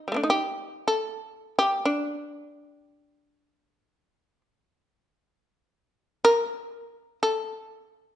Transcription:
Already playing: D#4
0.08 G3
0.12 A3 A#3
0.16 D4
0.23 D#4
0.30 G4
0.88 A4
1.59 G4
1.85 D4
6.25 A#4
7.23 A4

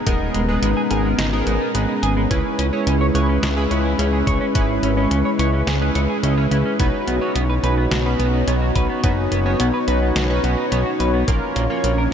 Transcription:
Already playing: G#3 B3 A#5
0.06 D#1 G#3 B3 C#4 D#4 G#4 A#4, kick, closed hi-hat
0.34 D#1 G#3, closed hi-hat
0.49 G#3 B3 D#4 G#4 B4
0.62 G#1 G#3, closed hi-hat
0.77 G#4
0.91 G#1 B3 D#4 G#4 A#4, closed hi-hat
1.05 G#3
1.18 G#1 D#4, snare, closed hi-hat
1.33 B3 D#4 G#4 A#4
1.47 G#1 G#3, closed hi-hat
1.61 B3
1.75 G#1 G#3 B3 D#4 G#4 B4, closed hi-hat
1.89 D#4
2.03 G#1 G#4, closed hi-hat
2.17 G#3
2.31 C#2 G#3 C#4 E4 G#4 B4, kick, closed hi-hat
2.59 C#2 C#4, closed hi-hat
2.73 C#4 E4 G#4 C#5
2.87 C#2 C#4, closed hi-hat
3.01 C#5
3.15 C#2 C#4 E4 G#4 B4 C#5, closed hi-hat
3.29 C#4
3.43 C#2 G#4, snare, closed hi-hat
3.57 C#4 E4 G#4 B4
3.71 C#2 C#4, closed hi-hat
3.85 E4
3.99 C#2 C#4 E4 G#4 C#5, closed hi-hat
4.13 G#4
4.27 C#2 C#5, kick, closed hi-hat
4.41 C#4
4.55 G#1 C#4 E4 G#4 B4, kick, closed hi-hat
4.83 G#1 C#4, closed hi-hat
4.97 C#4 E4 G#4 C#5
5.11 C#2 C#4, closed hi-hat
5.25 C#5
5.39 C#2 C#4 E4 G#4 B4 C#5, closed hi-hat
5.54 C#4
5.67 C#2 G#4, snare, closed hi-hat
5.81 C#4 E4 G#4 B4
5.95 C#2 C#5, closed hi-hat
6.09 G#4
6.23 C#2 C#4 E4 G#4 D#5, closed hi-hat
6.37 C#4 E4 G#4 C#5
6.51 C#2 C#4 E4 G#4 B4, closed hi-hat
6.66 C#4
6.79 B1 B3 C#4 D#4 F#4 B4 C#5, kick, closed hi-hat
7.07 B1 B3, closed hi-hat
7.21 B3 C#4 D#4 F#4 C#5
7.35 B1 B3, closed hi-hat
7.50 B4
7.63 B1 C#4 D#4 F#4 B4, closed hi-hat
7.78 B3
7.91 B1 F#4, snare, closed hi-hat
8.06 C#4 D#4 F#4 B4
8.19 B1 B3, closed hi-hat
8.33 D#4
8.48 B1 B3 C#4 D#4 F#4 C#5, closed hi-hat
8.62 F#4
8.75 B1 B4, kick, closed hi-hat
8.90 B3
9.04 F#1 B3 C#4 D#4 F#4 B4, kick, closed hi-hat
9.31 F#1 B3, closed hi-hat
9.46 B3 C#4 D#4 F#4 C#5
9.60 B1 B3, closed hi-hat
9.74 B4
9.88 B1 C#4 D#4 F#4 B4, closed hi-hat
10.02 B3
10.16 B1 F#4, snare, closed hi-hat
10.30 C#4 D#4 F#4 B4
10.44 B1 B3, closed hi-hat
10.58 D#4
10.72 B1 B3 C#4 D#4 F#4 C#5, closed hi-hat
10.86 F#4
11.00 B1 B4, closed hi-hat
11.14 B3
11.28 A#1 F3 A#3 C#4 F4 A#4, kick, closed hi-hat
11.56 A#1 A#3, closed hi-hat
11.70 A#3 C#4 F4 C#5
11.84 A#1 A#3, closed hi-hat
11.98 A#4

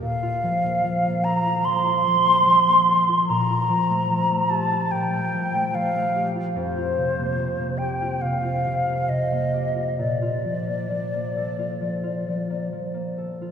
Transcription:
Already playing: A#3 A4
0.02 A#2 F5
0.23 F4
0.43 F3
0.64 A#3
0.84 F3
1.06 A#3
1.24 A4 A#5
1.47 F4
1.65 F3 C6
1.86 F4
2.07 F3
2.26 A#3
2.46 F3
2.67 A#3
2.89 A4
3.09 F4
3.27 A#2 A#5
3.50 F4
3.69 F3
3.90 A3
4.10 F3
4.31 A3
4.50 G4 A5
4.71 F4
4.91 A#2 G5
5.13 A3
5.34 F3
5.55 A3
5.74 F3 F5
5.95 A3
6.16 G4
6.36 F4
6.55 F2 C5
6.78 F4
6.98 C3
7.18 A#3
7.38 C3
7.60 A#3
7.78 G4 G5
8.02 F4
8.21 C3 F5
8.45 F4
8.67 C3
8.89 A#3
9.09 C3 D#5
9.32 A#3
9.54 G4
9.75 F4
9.98 A#2 D5
10.22 F4
10.45 F3
10.67 A#3
10.90 F3
11.14 A#3
11.37 A4
11.59 F4
11.81 F3
12.04 F4
12.28 F3
12.50 A#3
12.73 F3
12.94 A#3
13.18 A4
13.42 F4

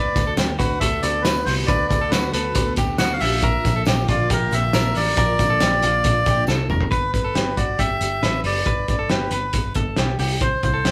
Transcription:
Already playing: D3 A3 B3 F#4 B4 D5
0.16 D2, kick, closed hi-hat, tambourine
0.27 A4
0.37 D2 G4, snare, closed hi-hat, tambourine
0.58 D2 F#4 B4, kick, closed hi-hat
0.80 D2 A4 E5, kick, closed hi-hat
1.02 D2 D5, closed hi-hat, tambourine
1.22 D2 B4, snare, closed hi-hat, tambourine
1.45 C2 C5, open hi-hat, tambourine
1.67 D2 B4 D5, kick, closed hi-hat, tambourine
1.88 D2 D5, kick, closed hi-hat
1.93 tambourine
2.01 A4
2.11 D2 F#4 B4, snare, closed hi-hat, tambourine
2.33 D2 A4 B4, closed hi-hat
2.55 D2, kick, closed hi-hat, tambourine
2.76 D2 G4, kick, closed hi-hat, tambourine
2.98 D2 F#4 F#5, snare, closed hi-hat, tambourine
3.13 F5
3.20 A#1 D3 F3 A#3 F4 E5, open hi-hat, tambourine
3.42 A#4, kick, closed hi-hat, tambourine
3.65 A#1, kick, closed hi-hat, tambourine
3.76 A4
3.85 A#1 G4, snare, closed hi-hat, tambourine
4.08 A#1 F4 D5, kick, closed hi-hat
4.30 A#1 G4 A#4, kick, closed hi-hat
4.51 A#1 E5, closed hi-hat, tambourine
4.73 A#1 A#4, snare, closed hi-hat, tambourine
4.95 A1 D5, open hi-hat, tambourine
5.17 A#1 A#4 D5, kick, closed hi-hat, tambourine
5.39 A#1, kick, closed hi-hat, tambourine
5.50 A4
5.60 A#1 G4, snare, closed hi-hat, tambourine
5.82 A#1 F4, closed hi-hat
6.04 A#1, kick, closed hi-hat
6.26 A#1 G4, kick, closed hi-hat, tambourine
6.47 C2 A4, snare, tambourine
6.69 F1 A#4, mid tom, tambourine
6.81 floor tom
6.91 G1 B4, kick, closed hi-hat
7.13 G1 B4, kick, closed hi-hat
7.24 A4
7.35 G1 G4, snare, closed hi-hat
7.57 G1 F#4 D5, kick, closed hi-hat
7.79 G1 G4 E5, kick, closed hi-hat
8.01 G1, closed hi-hat
8.22 A1 B4, snare, closed hi-hat
8.44 F#1 D5, open hi-hat
8.66 G1 B4, kick, closed hi-hat
8.88 G1 D5, kick, closed hi-hat
8.99 A4
9.09 G1 G4 B4, snare, closed hi-hat
9.31 G1 B4, closed hi-hat
9.53 G1, kick, closed hi-hat
9.74 G1 A4, kick, closed hi-hat
9.96 B1 G4, snare, closed hi-hat
10.19 C2 G4, open hi-hat
10.40 C5, kick, closed hi-hat
10.63 C2 C5, kick, closed hi-hat
10.74 A4
10.85 C2 G4, snare, closed hi-hat

